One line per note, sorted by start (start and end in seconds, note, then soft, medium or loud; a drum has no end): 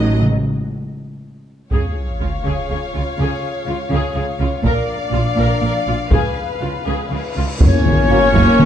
0.00 0.14 A1 medium
0.00 0.14 A2 medium
0.00 0.23 F#3 medium
0.00 0.22 D#4 medium
0.00 0.21 D#5 medium
0.00 0.22 D#5 medium
0.22 0.93 C#3 medium
1.71 1.80 C#2 soft
1.71 1.80 C#3 soft
1.71 4.61 C#3 soft
1.71 4.60 F4 soft
1.71 1.95 G#4 soft
1.71 4.60 C#5 soft
1.71 4.60 F5 soft
1.71 taiko soft
1.71 sub drop soft
2.21 2.29 C#2 soft
2.21 2.29 C#3 soft
2.21 2.29 F4 soft
2.44 2.54 C#2 soft
2.44 2.52 C#3 soft
2.44 2.68 G#4 soft
2.70 2.78 C#2 soft
2.70 2.78 C#3 soft
2.70 2.78 G#4 soft
2.93 3.03 C#2 soft
2.93 3.01 C#3 soft
2.93 3.03 F4 soft
3.18 3.26 C#2 soft
3.18 3.26 C#3 soft
3.18 3.42 G#4 soft
3.66 3.76 C#2 soft
3.66 3.74 C#3 soft
3.66 3.76 F4 soft
3.90 3.99 C#2 medium
3.90 3.98 C#3 medium
3.90 4.14 G#4 medium
4.14 4.23 C#2 soft
4.14 4.22 C#3 soft
4.14 4.23 G#4 soft
4.39 4.48 C#2 soft
4.39 4.47 C#3 soft
4.39 4.48 F4 soft
4.63 4.72 A#1 medium
4.63 4.71 A#2 medium
4.63 7.32 F3 medium
4.63 6.08 D4 medium
4.63 4.87 A#4 medium
4.63 6.09 D5 medium
4.63 7.36 F5 medium
4.63 taiko medium
5.12 5.20 A#1 soft
5.12 5.20 A#2 soft
5.12 5.21 F4 soft
5.36 5.46 A#1 medium
5.36 5.44 A#2 medium
5.36 5.61 A#4 medium
5.61 5.69 A#1 soft
5.61 5.69 A#2 soft
5.61 5.72 A#4 soft
5.87 5.95 A#1 soft
5.87 5.95 A#2 soft
5.87 5.95 F4 soft
6.10 6.20 C#2 soft
6.10 6.18 C#3 medium
6.10 7.32 B3 soft
6.10 6.35 G#4 soft
6.10 7.38 B4 soft
6.10 taiko medium
6.10 cymbal swell soft
6.61 6.69 C#2 soft
6.61 6.70 C#3 soft
6.61 6.70 F4 soft
6.87 6.95 C#2 soft
6.87 6.95 C#3 medium
6.87 7.10 G#4 soft
7.10 7.19 C#2 soft
7.10 7.18 C#3 soft
7.10 7.19 G#4 soft
7.36 7.45 C#2 soft
7.36 7.44 C#3 soft
7.36 7.45 F4 soft
7.60 7.71 F#1 medium
7.60 7.69 F#1 medium
7.60 7.68 F#2 medium
7.60 8.65 A#3 medium
7.60 8.65 C#4 loud
7.60 8.65 C#4 medium
7.60 8.65 C#5 medium
7.60 taiko medium
7.60 tam-tam medium
7.60 sub drop medium
7.86 7.94 F#1 medium
7.86 7.96 F#1 medium
7.86 7.94 F#2 medium
7.86 taiko mid medium
8.09 8.18 F#1 medium
8.09 8.20 F#1 medium
8.09 8.18 F#2 medium
8.09 8.18 F#3 medium
8.09 8.18 A#3 medium
8.34 8.44 F#1 medium
8.34 8.43 F#1 medium
8.34 8.42 F#2 medium
8.34 taiko medium
8.59 8.65 F#1 medium
8.59 8.65 F#2 medium
8.59 taiko mid medium